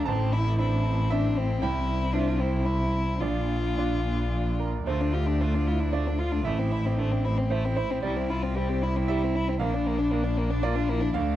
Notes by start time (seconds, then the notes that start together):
Already playing: A4
0.05 A1 C4 E4 A5
0.33 E4
0.59 C4 D4 E4 E5
0.85 C4
1.10 D4 E5
1.38 C4
1.61 C2 E4 C5 G5
2.13 C4 D4 E4 F4 E5
2.40 C4 E4
2.66 E4
3.21 A#1 A#3 D4 F4 D5
3.78 D4 F4 D5
4.60 A#4
4.87 D2 A3 F4 C5 D5
5.01 D4
5.13 F4 G4
5.27 D4
5.41 A3 D4 F4
5.55 D4
5.67 E4 F4
5.80 D4
5.93 A3 D4 F4 D5
6.07 D4
6.19 F4
6.32 D4
6.45 A1 A3 E4 C5 E5
6.59 C4
6.72 E4
6.86 C4
6.98 A3 C4 D4
7.12 C4
7.24 C4 E4
7.38 C4
7.50 A3 E4 C5 E5
7.65 C4
7.76 E4 C5
7.91 C4
8.03 C2 G3 C4 E4 D5
8.16 C4
8.30 E4 F4
8.43 C4
8.56 G3 C4 G4
8.69 C4
8.83 E4
8.97 C4
9.08 G3 E4 E5
9.23 C4
9.36 E4
9.49 C4
9.59 A#1 A#3 D4 D5 F5
9.74 D4
9.87 A#3
9.98 D4
10.11 A#3 D4
10.24 D4
10.37 A#3
10.50 D4
10.63 A#3 F4 D5
10.75 D4
10.89 A#3 E4
11.01 D4
11.14 D2 A3 D4 F5